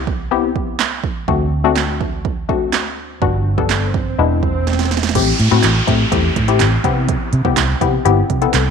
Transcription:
Already playing: fingered electric bass C2
0.07 kick
0.31 synth pluck B3 C4 E4 G4
0.56 kick
0.79 snare, clap
1.04 kick
1.28 fingered electric bass D2, synth pluck A3 C4 D4 F#4, kick, swell
1.64 synth pluck A3 C4 D4 F#4
1.76 snare, clap
2.01 kick
2.25 kick
2.49 synth pluck A3 C4 D4 F#4, kick
2.73 snare, clap
3.22 fingered electric bass G1, synth pluck G3 B3 D4 F#4, kick
3.58 synth pluck G3 B3 D4 A4, kick
3.69 snare, clap
3.94 kick
4.19 fingered electric bass E1, synth pluck G#3 B3 D4 E4
4.43 kick
4.67 snare
4.73 snare
4.79 snare
4.85 snare
4.91 snare
4.97 snare
5.03 snare
5.09 snare
5.15 fingered electric bass A1, synth pluck A3 C4 E4 G4, kick, closed hi-hat, crash, downlifter
5.39 fingered electric bass A2, closed hi-hat
5.51 fingered electric bass A2, synth pluck A3 C4 E4 F#4
5.63 fingered electric bass A1, snare, clap, closed hi-hat
5.87 fingered electric bass A2, synth pluck A3 C4 E4 G4, kick, closed hi-hat
6.12 fingered electric bass E2, synth pluck A3 C4 E4 G4, kick, closed hi-hat
6.36 fingered electric bass A2, kick, closed hi-hat
6.48 synth pluck A3 C4 E4 G4, closed hi-hat
6.60 fingered electric bass A1, snare, clap, closed hi-hat
6.84 fingered electric bass C3, synth pluck B3 C4 E4 G4, kick, closed hi-hat
7.09 kick, closed hi-hat
7.33 fingered electric bass C3, closed hi-hat
7.45 synth pluck B3 C4 E4 G4, kick
7.57 fingered electric bass C2, snare, clap, closed hi-hat
7.81 fingered electric bass C3, synth pluck B3 C4 E4 G4, kick, closed hi-hat
8.05 fingered electric bass G1, synth pluck B3 C4 E4 G4, closed hi-hat
8.30 fingered electric bass C3, kick, closed hi-hat
8.41 synth pluck B3 C4 E4 A4, closed hi-hat
8.53 fingered electric bass C2, snare, clap, closed hi-hat

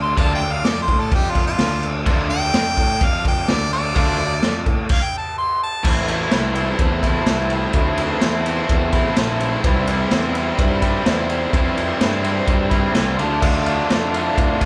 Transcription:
Already playing: picked electric bass D2, transistor combo organ A4 D5 F5
0.02 harmonica C6
0.17 picked electric bass D2, overdriven electric guitar D3 A3 D4 F4, harmonica A5, kick, crash
0.34 harmonica G5
0.41 crash
0.51 harmonica F5
0.64 picked electric bass F2, harmonica D5, snare, crash
0.82 harmonica C5
0.88 picked electric bass A2, kick, crash
0.99 harmonica A4
1.12 picked electric bass F2, harmonica G4, kick, crash
1.30 harmonica F4
1.35 kick, snare, crash
1.47 harmonica F4
1.59 picked electric bass D2, snare, crash
1.83 crash
2.06 picked electric bass D2, overdriven electric guitar D3 A3 D4 F4, transistor combo organ A4 D5 F5, kick, crash
2.30 harmonica G5, crash
2.54 picked electric bass F2, snare, crash
2.77 picked electric bass A2, kick, crash
3.01 picked electric bass F2, kick, crash
3.05 harmonica F5
3.25 harmonica G5, kick, crash
3.48 picked electric bass D2, harmonica D5, snare, crash
3.73 harmonica D5, crash
3.96 picked electric bass D2, overdriven electric guitar D3 A3 D4 F4, kick, crash
4.19 crash
4.43 picked electric bass F2, snare, crash
4.66 picked electric bass A2, kick, crash
4.89 harmonica F5, kick, crash
5.03 harmonica G5
5.17 harmonica A5
5.38 harmonica C6
5.63 harmonica A5
5.83 picked electric bass A1, overdriven electric guitar A2 E3 A3 C4 E4, transistor combo organ A4 C5 E5, kick, crash
6.07 overdriven electric guitar A3 C4 E4, ride
6.31 picked electric bass C2, overdriven electric guitar E3 A3 C4 E4, snare, ride
6.54 overdriven electric guitar A3 C4 E4, ride
6.79 picked electric bass E2, kick, ride
7.03 overdriven electric guitar A3 C4 E4, kick, ride
7.26 picked electric bass C2, overdriven electric guitar A2 E3 A3 C4 E4, snare, ride
7.50 ride
7.73 picked electric bass D2, overdriven electric guitar A2 E3 A3 C4, kick, ride
7.77 overdriven electric guitar E4
7.97 overdriven electric guitar A3 C4 E4, ride
8.21 picked electric bass E2, overdriven electric guitar E3 A3 C4 E4, snare, ride
8.45 overdriven electric guitar A3 C4 E4, ride
8.69 picked electric bass E2, kick, ride
8.92 overdriven electric guitar A3 C4 E4, kick, ride
9.16 picked electric bass A#1, overdriven electric guitar A2 E3 A3 C4 E4, snare, ride
9.40 ride
9.61 picked electric bass C2, overdriven electric guitar C3 E3, transistor combo organ G4 C5 E5, kick, ride
9.66 overdriven electric guitar G3 C4 E4
9.87 overdriven electric guitar G3 C4 E4, ride
10.11 picked electric bass E2, overdriven electric guitar E3 G3 C4 E4, snare, ride
10.35 overdriven electric guitar G3 C4 E4, ride
10.59 picked electric bass G2, kick, ride
10.82 overdriven electric guitar G3 C4 E4, kick, ride
11.05 picked electric bass E2, overdriven electric guitar C3 E3 G3 C4 E4, snare, ride
11.30 ride
11.52 picked electric bass F2, overdriven electric guitar C3 E3 G3 C4 E4, kick, ride
11.76 overdriven electric guitar G3 C4 E4, ride
12.00 picked electric bass G2, overdriven electric guitar E3 G3 C4 E4, snare, ride
12.23 overdriven electric guitar G3 C4 E4, ride
12.48 picked electric bass G2, kick, ride
12.70 overdriven electric guitar G3 C4 E4, kick, ride
12.93 picked electric bass C2, overdriven electric guitar C3 E3 G3 C4 E4, snare, ride
13.17 picked electric bass D2, overdriven electric guitar D3 A3 D4 F4, transistor combo organ A4 D5 F5, ride
13.41 picked electric bass D2, overdriven electric guitar D3 A3 D4 F4, kick, crash
13.66 overdriven electric guitar A3 D4 F4, ride
13.89 picked electric bass F2, overdriven electric guitar D3 A3 D4 F4, snare, ride
14.13 overdriven electric guitar A3 D4 F4, ride
14.38 picked electric bass A2, kick, ride
14.60 overdriven electric guitar D4 F4, kick, ride

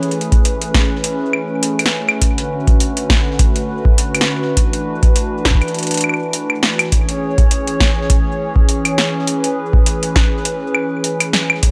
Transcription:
Already playing: analog synth pad E3 A3 C#4 G#4 B4
0.03 closed hi-hat
0.11 closed hi-hat
0.21 closed hi-hat
0.32 kick, closed hi-hat
0.45 closed hi-hat
0.62 closed hi-hat
0.74 kick, snare
1.04 closed hi-hat
1.33 claves
1.63 closed hi-hat
1.79 closed hi-hat, claves
1.86 snare
2.09 claves
2.22 analog synth pad D3 F#4 B4, kick, closed hi-hat
2.38 closed hi-hat
2.67 kick, closed hi-hat
2.80 closed hi-hat
2.97 closed hi-hat
3.10 kick, snare
3.39 kick, closed hi-hat
3.56 closed hi-hat
3.85 kick
3.98 closed hi-hat
4.15 closed hi-hat, claves
4.21 snare
4.57 analog synth pad E3 D4, kick, closed hi-hat
4.73 closed hi-hat
5.03 kick, closed hi-hat
5.16 closed hi-hat
5.45 kick, snare
5.51 kick
5.55 kick
5.62 closed hi-hat, claves
5.68 closed hi-hat
5.74 closed hi-hat
5.79 closed hi-hat
5.83 closed hi-hat
5.87 closed hi-hat
5.91 closed hi-hat
5.94 closed hi-hat
5.97 closed hi-hat
6.01 closed hi-hat, claves
6.09 claves
6.14 claves
6.33 closed hi-hat
6.50 claves
6.63 snare
6.79 closed hi-hat, claves
6.92 analog synth pad C#4 G#4 C#5, kick, closed hi-hat
7.09 closed hi-hat
7.38 kick, closed hi-hat
7.51 closed hi-hat
7.67 closed hi-hat
7.80 kick, snare
8.10 kick, closed hi-hat
8.56 kick
8.69 closed hi-hat
8.85 closed hi-hat, claves
8.98 snare
9.27 analog synth pad B4, closed hi-hat
9.44 closed hi-hat
9.73 kick
9.86 closed hi-hat
10.03 closed hi-hat
10.16 kick, snare
10.45 closed hi-hat
10.75 claves
11.04 closed hi-hat
11.20 closed hi-hat, claves
11.33 snare
11.50 claves
11.63 analog synth pad F#3 B3 D4 A4 C#5, kick, closed hi-hat

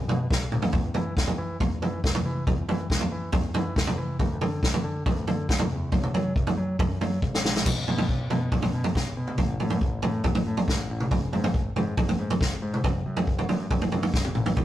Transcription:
0.08 picked electric bass B2, floor tom
0.30 picked electric bass B1, kick, snare
0.52 picked electric bass D2, mid tom
0.62 floor tom
0.73 picked electric bass E2, kick, floor tom
0.94 picked electric bass E3, floor tom
1.17 picked electric bass E2, kick, snare
1.27 floor tom
1.38 picked electric bass E3
1.60 picked electric bass E2, kick, floor tom
1.82 picked electric bass E3, floor tom
2.04 picked electric bass E2, kick, snare
2.15 floor tom, mid tom
2.25 picked electric bass E3
2.47 picked electric bass E2, kick, floor tom
2.68 picked electric bass E3, floor tom
2.90 picked electric bass E2, kick, snare
3.01 floor tom
3.12 picked electric bass E3
3.32 picked electric bass E2, kick, floor tom
3.54 picked electric bass E3, floor tom
3.76 picked electric bass E2, kick, snare
3.87 floor tom, mid tom
3.98 picked electric bass E3
4.19 picked electric bass D2, kick, floor tom
4.41 picked electric bass D3, floor tom
4.63 picked electric bass D2, kick, snare
4.74 floor tom
4.84 picked electric bass D3
5.06 picked electric bass D2, kick, floor tom
5.27 picked electric bass D3, floor tom
5.49 picked electric bass D2, kick, snare
5.59 floor tom, mid tom
5.72 picked electric bass E2
5.92 picked electric bass F#2, kick, floor tom
6.03 mid tom
6.14 picked electric bass F#3, floor tom
6.36 picked electric bass F#2, kick
6.47 floor tom
6.58 picked electric bass F#3
6.79 picked electric bass F#2, kick, floor tom
7.01 picked electric bass F#3, floor tom
7.22 picked electric bass G#1, kick
7.34 snare
7.45 picked electric bass A#1, snare
7.56 snare
7.66 picked electric bass B1, kick, floor tom, crash
7.88 picked electric bass B2, floor tom
7.98 floor tom
8.09 picked electric bass B1, kick
8.30 picked electric bass B2, floor tom
8.52 picked electric bass B1, kick, floor tom
8.62 floor tom
8.74 picked electric bass B2
8.84 floor tom
8.95 picked electric bass B1, kick, snare
9.17 picked electric bass B2
9.27 mid tom
9.38 picked electric bass A1, kick, floor tom
9.60 picked electric bass A2, floor tom
9.70 floor tom
9.81 picked electric bass A1, kick
10.02 picked electric bass A2, floor tom
10.24 picked electric bass A1, kick, floor tom
10.35 floor tom
10.47 picked electric bass A2
10.57 floor tom
10.68 picked electric bass A1, kick, snare
10.90 picked electric bass A1
11.00 mid tom
11.11 picked electric bass G#1, kick, floor tom
11.32 picked electric bass G#2, floor tom
11.44 floor tom
11.54 picked electric bass G#1, kick
11.76 picked electric bass G#2, floor tom
11.97 picked electric bass G#1, kick, floor tom
12.09 floor tom
12.19 picked electric bass G#2
12.30 floor tom
12.41 picked electric bass G#1, kick, snare
12.62 picked electric bass G#2
12.74 mid tom
12.84 picked electric bass F#1, kick, floor tom
13.06 picked electric bass F#2
13.17 floor tom
13.27 picked electric bass F#1, kick
13.39 floor tom
13.49 picked electric bass F#2, floor tom
13.71 picked electric bass F#1, kick, floor tom
13.82 floor tom
13.92 picked electric bass F#2, floor tom
14.03 floor tom
14.13 picked electric bass F#1, kick, snare
14.25 high tom
14.35 picked electric bass A1, mid tom
14.46 floor tom
14.57 picked electric bass B1, kick, floor tom

